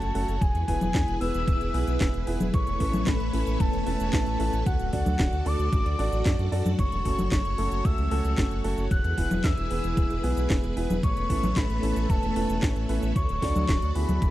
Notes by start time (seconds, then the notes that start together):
Already playing: A3 C#4 F#4 A4 C#5 A5
0.02 F#1, closed hi-hat, cabasa
0.15 F#1 A3 C#4 F#4 A4, open hi-hat
0.28 F#1, closed hi-hat, cabasa
0.41 E1 E4 G#4 B4 G#5, kick, closed hi-hat, cabasa
0.55 E2, closed hi-hat, cabasa
0.68 E1 B3 E4 G#4 B4 G#5, kick, open hi-hat
0.81 E1, closed hi-hat, high conga, cabasa
0.94 E2, kick, snare, clap, closed hi-hat, cabasa
1.08 E1, closed hi-hat, cabasa
1.21 E1 B3 E4 G#4 B4 E6, open hi-hat
1.34 E1, closed hi-hat, cabasa
1.48 D1, kick, closed hi-hat, cabasa
1.61 E1, closed hi-hat, cabasa
1.74 B1 B3 E4 G#4 B4, open hi-hat
1.87 B1, closed hi-hat, cabasa
2.01 E1, kick, snare, clap, closed hi-hat, cabasa
2.14 E1, closed hi-hat, cabasa
2.27 E1 B3 E4 G#4 B4, open hi-hat
2.40 E1, closed hi-hat, high conga, cabasa
2.54 A1 A3 A4 B4 C#5 E5 C#6, kick, closed hi-hat, cabasa
2.67 E1, closed hi-hat, cabasa
2.80 A1 C#4 E4 A4 B4, kick, open hi-hat
2.93 A1, closed hi-hat, high conga, cabasa
3.07 A1 B5, kick, snare, clap, closed hi-hat, cabasa
3.20 A1, closed hi-hat, cabasa
3.33 A1 C#4 E4 A4 B4, open hi-hat
3.47 A1, closed hi-hat, cabasa
3.60 E1 A5, kick, closed hi-hat, cabasa
3.73 E1, closed hi-hat, cabasa
3.86 E1 C#4 E4 A4 B4 A5, open hi-hat
4.00 E1, closed hi-hat, cabasa
4.13 A1 A5, kick, snare, clap, closed hi-hat, cabasa
4.26 A1, closed hi-hat, cabasa
4.40 A1 C#4 E4 A4 B4, open hi-hat
4.53 A1, closed hi-hat, cabasa
4.66 D2 F#4 D5 F#5, kick, closed hi-hat, cabasa
4.79 D1, closed hi-hat, cabasa
4.93 D2 D4 F#4 A4 D5 F#5, kick, open hi-hat
5.06 D2, closed hi-hat, high conga, cabasa
5.19 D1, kick, snare, clap, closed hi-hat, cabasa
5.33 D2, closed hi-hat, cabasa
5.46 D2 D4 F#4 A4 D5 D6, open hi-hat
5.59 D2, closed hi-hat, cabasa
5.73 A1, kick, closed hi-hat, cabasa
5.86 D2, closed hi-hat, cabasa
5.99 A1 D4 F#4 A4 D5, open hi-hat
6.12 A1, closed hi-hat, cabasa
6.26 F#2, kick, snare, clap, closed hi-hat, cabasa
6.39 F#2, closed hi-hat, cabasa
6.52 F#2 D4 F#4 A4 D5, open hi-hat
6.65 F#2, closed hi-hat, high conga, cabasa
6.79 F#1 C#5 C#6, kick, closed hi-hat, cabasa
6.92 E1, closed hi-hat, cabasa
7.05 F#1 A3 C#4 F#4 A4, kick, open hi-hat
7.18 F#1, closed hi-hat, high conga, cabasa
7.32 F#1 C#6, kick, snare, clap, closed hi-hat, cabasa
7.45 F#1, closed hi-hat, cabasa
7.58 F#1 A3 C#4 F#4 A4, open hi-hat
7.71 F#1, closed hi-hat, cabasa
7.85 C#2 E6, kick, closed hi-hat, cabasa
7.98 C#2, closed hi-hat, cabasa
8.11 C#2 A3 C#4 F#4 A4, open hi-hat
8.25 C#2, closed hi-hat, cabasa
8.38 F#1, kick, snare, clap, closed hi-hat, cabasa
8.51 F#1, closed hi-hat, cabasa
8.64 F#1 A3 C#4 F#4 A4, open hi-hat
8.78 F#1, closed hi-hat, cabasa
8.91 E1 E4 G#4 B4 F#6, kick, closed hi-hat, cabasa
9.04 E2, closed hi-hat, cabasa
9.17 E1 B3 E4 G#4 B4, kick, open hi-hat
9.31 E1, closed hi-hat, high conga, cabasa
9.44 E2 E6, kick, snare, clap, closed hi-hat, cabasa
9.57 E1, closed hi-hat, cabasa
9.71 E1 B3 E4 G#4 B4, open hi-hat
9.84 E1, closed hi-hat, cabasa
9.97 D1, kick, closed hi-hat, cabasa
10.10 E1, closed hi-hat, cabasa
10.24 B1 B3 E4 G#4 B4, open hi-hat
10.37 B1, closed hi-hat, cabasa
10.50 E1, kick, snare, clap, closed hi-hat, cabasa
10.63 E1, closed hi-hat, cabasa
10.77 E1 B3 E4 G#4 B4, open hi-hat
10.90 E1, closed hi-hat, high conga, cabasa
11.03 A1 A3 A4 C#5 E5 C#6, kick, closed hi-hat, cabasa
11.16 E1, closed hi-hat, cabasa
11.30 A1 C#4 E4 A4 B4, kick, open hi-hat
11.43 A1, closed hi-hat, high conga, cabasa
11.56 A1 B5, kick, snare, clap, closed hi-hat, cabasa
11.70 A1, closed hi-hat, cabasa
11.83 A1 C#4 E4 A4 B4, open hi-hat
11.96 A1, closed hi-hat, cabasa
12.10 E1 A5, kick, closed hi-hat, cabasa
12.23 E1, closed hi-hat, cabasa
12.36 E1 C#4 E4 A4 B4, open hi-hat
12.49 E1, closed hi-hat, cabasa
12.63 A1, kick, snare, clap, closed hi-hat, cabasa
12.76 A1, closed hi-hat, cabasa
12.89 A1 C#4 E4 A4 B4, open hi-hat
13.02 A1, closed hi-hat, cabasa
13.16 D2 F#4 A4 D5 C#6, kick, closed hi-hat, cabasa
13.29 D1, closed hi-hat, cabasa
13.42 D2 D4 F#4 A4 D5, kick, snare, open hi-hat
13.56 D2, closed hi-hat, high conga, cabasa
13.69 D1, kick, snare, clap, closed hi-hat, cabasa
13.82 D2, closed hi-hat, cabasa
13.95 D2 B3 E4 G#4 B4 B5, open hi-hat
14.09 D2, closed hi-hat, high conga, cabasa
14.22 E1 E4 G#4 B4, kick, closed hi-hat, cabasa